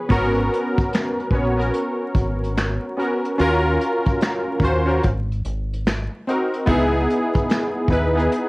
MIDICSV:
0, 0, Header, 1, 4, 480
1, 0, Start_track
1, 0, Key_signature, 5, "minor"
1, 0, Tempo, 821918
1, 57, Time_signature, 4, 2, 24, 8
1, 4958, End_track
2, 0, Start_track
2, 0, Title_t, "Synth keys"
2, 0, Program_c, 0, 88
2, 0, Control_c, 0, 64, 127
2, 0, Note_on_c, 0, 49, 49
2, 0, Note_on_c, 0, 53, 49
2, 0, Note_on_c, 0, 59, 54
2, 0, Note_on_c, 0, 68, 79
2, 0, Note_on_c, 0, 71, 70
2, 0, Note_on_c, 0, 73, 53
2, 51, Note_off_c, 0, 59, 0
2, 51, Note_on_c, 0, 59, 106
2, 60, Note_on_c, 0, 61, 91
2, 63, Control_c, 0, 64, 0
2, 64, Note_off_c, 0, 68, 0
2, 65, Note_on_c, 0, 66, 96
2, 66, Note_off_c, 0, 49, 0
2, 66, Note_off_c, 0, 71, 0
2, 67, Note_off_c, 0, 53, 0
2, 68, Note_off_c, 0, 73, 0
2, 68, Note_on_c, 0, 70, 116
2, 183, Control_c, 0, 64, 127
2, 672, Note_off_c, 0, 59, 0
2, 676, Note_off_c, 0, 61, 0
2, 679, Note_off_c, 0, 66, 0
2, 680, Note_off_c, 0, 70, 0
2, 770, Note_on_c, 0, 59, 84
2, 775, Note_on_c, 0, 61, 75
2, 780, Note_on_c, 0, 66, 73
2, 786, Note_on_c, 0, 73, 81
2, 893, Note_off_c, 0, 59, 0
2, 896, Note_off_c, 0, 61, 0
2, 898, Note_off_c, 0, 66, 0
2, 901, Note_off_c, 0, 73, 0
2, 918, Note_on_c, 0, 59, 72
2, 923, Note_on_c, 0, 61, 68
2, 929, Note_on_c, 0, 66, 70
2, 932, Note_on_c, 0, 70, 84
2, 1607, Note_off_c, 0, 59, 0
2, 1610, Note_off_c, 0, 61, 0
2, 1613, Note_off_c, 0, 66, 0
2, 1615, Note_off_c, 0, 70, 0
2, 1732, Note_on_c, 0, 59, 74
2, 1736, Note_on_c, 0, 61, 74
2, 1743, Note_on_c, 0, 66, 76
2, 1748, Note_on_c, 0, 70, 81
2, 1941, Note_off_c, 0, 59, 0
2, 1944, Note_off_c, 0, 61, 0
2, 1947, Note_off_c, 0, 66, 0
2, 1949, Note_off_c, 0, 70, 0
2, 1974, Note_on_c, 0, 61, 102
2, 1979, Note_on_c, 0, 65, 100
2, 1985, Control_c, 0, 64, 0
2, 1985, Note_on_c, 0, 66, 87
2, 1991, Note_on_c, 0, 70, 124
2, 2094, Control_c, 0, 64, 127
2, 2593, Note_off_c, 0, 61, 0
2, 2596, Note_off_c, 0, 65, 0
2, 2599, Note_off_c, 0, 66, 0
2, 2602, Note_off_c, 0, 70, 0
2, 2694, Note_on_c, 0, 61, 81
2, 2701, Note_on_c, 0, 65, 72
2, 2706, Note_on_c, 0, 66, 79
2, 2712, Note_on_c, 0, 72, 102
2, 2815, Note_off_c, 0, 61, 0
2, 2819, Note_off_c, 0, 65, 0
2, 2821, Note_off_c, 0, 66, 0
2, 2824, Note_off_c, 0, 72, 0
2, 2836, Note_on_c, 0, 61, 85
2, 2843, Note_on_c, 0, 65, 74
2, 2848, Note_on_c, 0, 66, 74
2, 2851, Note_on_c, 0, 70, 86
2, 2934, Note_off_c, 0, 61, 0
2, 2938, Note_off_c, 0, 65, 0
2, 2940, Note_off_c, 0, 66, 0
2, 2942, Note_off_c, 0, 70, 0
2, 2946, Control_c, 0, 64, 0
2, 3049, Control_c, 0, 64, 127
2, 3663, Note_on_c, 0, 60, 82
2, 3670, Note_on_c, 0, 63, 77
2, 3674, Note_on_c, 0, 66, 72
2, 3680, Note_on_c, 0, 70, 85
2, 3867, Note_off_c, 0, 60, 0
2, 3870, Note_off_c, 0, 63, 0
2, 3872, Note_off_c, 0, 66, 0
2, 3875, Note_off_c, 0, 70, 0
2, 3889, Note_on_c, 0, 59, 117
2, 3895, Note_on_c, 0, 63, 91
2, 3901, Note_on_c, 0, 64, 105
2, 3905, Control_c, 0, 64, 0
2, 3906, Note_on_c, 0, 68, 120
2, 4000, Control_c, 0, 64, 127
2, 4511, Note_off_c, 0, 59, 0
2, 4514, Note_off_c, 0, 63, 0
2, 4517, Note_off_c, 0, 64, 0
2, 4519, Note_off_c, 0, 68, 0
2, 4612, Note_on_c, 0, 59, 77
2, 4616, Note_on_c, 0, 63, 74
2, 4622, Note_on_c, 0, 64, 77
2, 4626, Note_on_c, 0, 71, 99
2, 4734, Note_off_c, 0, 59, 0
2, 4736, Note_off_c, 0, 63, 0
2, 4739, Note_off_c, 0, 64, 0
2, 4741, Note_off_c, 0, 71, 0
2, 4758, Note_on_c, 0, 59, 86
2, 4760, Note_on_c, 0, 63, 75
2, 4766, Note_on_c, 0, 64, 67
2, 4772, Note_on_c, 0, 68, 89
2, 4958, Note_off_c, 0, 59, 0
2, 4958, Note_off_c, 0, 63, 0
2, 4958, Note_off_c, 0, 64, 0
2, 4958, Note_off_c, 0, 68, 0
2, 4958, End_track
3, 0, Start_track
3, 0, Title_t, "Fingered electric bass"
3, 0, Program_c, 1, 33
3, 62, Note_on_c, 1, 32, 96
3, 279, Note_off_c, 1, 32, 0
3, 767, Note_on_c, 1, 34, 81
3, 991, Note_off_c, 1, 34, 0
3, 1257, Note_on_c, 1, 32, 84
3, 1619, Note_off_c, 1, 32, 0
3, 1983, Note_on_c, 1, 39, 94
3, 2200, Note_off_c, 1, 39, 0
3, 2688, Note_on_c, 1, 39, 90
3, 2911, Note_off_c, 1, 39, 0
3, 2949, Note_on_c, 1, 32, 96
3, 3163, Note_off_c, 1, 32, 0
3, 3185, Note_on_c, 1, 32, 82
3, 3542, Note_off_c, 1, 32, 0
3, 3901, Note_on_c, 1, 37, 114
3, 4118, Note_off_c, 1, 37, 0
3, 4606, Note_on_c, 1, 39, 97
3, 4830, Note_off_c, 1, 39, 0
3, 4958, End_track
4, 0, Start_track
4, 0, Title_t, "Drums"
4, 59, Note_on_c, 9, 36, 108
4, 65, Note_on_c, 9, 42, 73
4, 118, Note_off_c, 9, 36, 0
4, 123, Note_off_c, 9, 42, 0
4, 200, Note_on_c, 9, 42, 37
4, 258, Note_off_c, 9, 42, 0
4, 311, Note_on_c, 9, 42, 65
4, 370, Note_off_c, 9, 42, 0
4, 454, Note_on_c, 9, 42, 51
4, 455, Note_on_c, 9, 36, 90
4, 512, Note_off_c, 9, 42, 0
4, 513, Note_off_c, 9, 36, 0
4, 542, Note_on_c, 9, 42, 76
4, 551, Note_on_c, 9, 38, 107
4, 557, Note_on_c, 9, 26, 91
4, 600, Note_off_c, 9, 42, 0
4, 610, Note_off_c, 9, 38, 0
4, 616, Note_off_c, 9, 26, 0
4, 700, Note_on_c, 9, 42, 33
4, 758, Note_off_c, 9, 42, 0
4, 764, Note_on_c, 9, 36, 83
4, 786, Note_on_c, 9, 42, 61
4, 822, Note_off_c, 9, 36, 0
4, 845, Note_off_c, 9, 42, 0
4, 941, Note_on_c, 9, 42, 45
4, 999, Note_off_c, 9, 42, 0
4, 1016, Note_on_c, 9, 42, 67
4, 1074, Note_off_c, 9, 42, 0
4, 1254, Note_on_c, 9, 36, 83
4, 1259, Note_on_c, 9, 42, 73
4, 1312, Note_off_c, 9, 36, 0
4, 1317, Note_off_c, 9, 42, 0
4, 1422, Note_on_c, 9, 42, 43
4, 1480, Note_off_c, 9, 42, 0
4, 1502, Note_on_c, 9, 38, 115
4, 1507, Note_on_c, 9, 42, 73
4, 1508, Note_on_c, 9, 26, 93
4, 1561, Note_off_c, 9, 38, 0
4, 1566, Note_off_c, 9, 26, 0
4, 1566, Note_off_c, 9, 42, 0
4, 1746, Note_on_c, 9, 42, 62
4, 1805, Note_off_c, 9, 42, 0
4, 1895, Note_on_c, 9, 42, 46
4, 1954, Note_off_c, 9, 42, 0
4, 1981, Note_on_c, 9, 42, 77
4, 2039, Note_off_c, 9, 42, 0
4, 2224, Note_on_c, 9, 42, 61
4, 2283, Note_off_c, 9, 42, 0
4, 2368, Note_on_c, 9, 42, 51
4, 2373, Note_on_c, 9, 36, 91
4, 2426, Note_off_c, 9, 42, 0
4, 2432, Note_off_c, 9, 36, 0
4, 2456, Note_on_c, 9, 42, 84
4, 2465, Note_on_c, 9, 38, 107
4, 2471, Note_on_c, 9, 26, 86
4, 2514, Note_off_c, 9, 42, 0
4, 2524, Note_off_c, 9, 38, 0
4, 2530, Note_off_c, 9, 26, 0
4, 2685, Note_on_c, 9, 36, 78
4, 2709, Note_on_c, 9, 42, 65
4, 2743, Note_off_c, 9, 36, 0
4, 2767, Note_off_c, 9, 42, 0
4, 2864, Note_on_c, 9, 42, 47
4, 2923, Note_off_c, 9, 42, 0
4, 2939, Note_on_c, 9, 42, 70
4, 2946, Note_on_c, 9, 36, 82
4, 2997, Note_off_c, 9, 42, 0
4, 3004, Note_off_c, 9, 36, 0
4, 3105, Note_on_c, 9, 42, 34
4, 3164, Note_off_c, 9, 42, 0
4, 3182, Note_on_c, 9, 42, 68
4, 3241, Note_off_c, 9, 42, 0
4, 3349, Note_on_c, 9, 42, 44
4, 3408, Note_off_c, 9, 42, 0
4, 3427, Note_on_c, 9, 38, 114
4, 3432, Note_on_c, 9, 42, 78
4, 3433, Note_on_c, 9, 26, 90
4, 3486, Note_off_c, 9, 38, 0
4, 3490, Note_off_c, 9, 42, 0
4, 3491, Note_off_c, 9, 26, 0
4, 3670, Note_on_c, 9, 42, 59
4, 3728, Note_off_c, 9, 42, 0
4, 3817, Note_on_c, 9, 42, 48
4, 3875, Note_off_c, 9, 42, 0
4, 3897, Note_on_c, 9, 36, 108
4, 3901, Note_on_c, 9, 42, 79
4, 3956, Note_off_c, 9, 36, 0
4, 3960, Note_off_c, 9, 42, 0
4, 4147, Note_on_c, 9, 42, 64
4, 4205, Note_off_c, 9, 42, 0
4, 4289, Note_on_c, 9, 42, 50
4, 4293, Note_on_c, 9, 36, 89
4, 4348, Note_off_c, 9, 42, 0
4, 4352, Note_off_c, 9, 36, 0
4, 4376, Note_on_c, 9, 42, 75
4, 4386, Note_on_c, 9, 38, 105
4, 4392, Note_on_c, 9, 26, 89
4, 4435, Note_off_c, 9, 42, 0
4, 4444, Note_off_c, 9, 38, 0
4, 4450, Note_off_c, 9, 26, 0
4, 4603, Note_on_c, 9, 36, 84
4, 4626, Note_on_c, 9, 42, 66
4, 4661, Note_off_c, 9, 36, 0
4, 4684, Note_off_c, 9, 42, 0
4, 4782, Note_on_c, 9, 42, 49
4, 4841, Note_off_c, 9, 42, 0
4, 4857, Note_on_c, 9, 42, 70
4, 4915, Note_off_c, 9, 42, 0
4, 4958, End_track
0, 0, End_of_file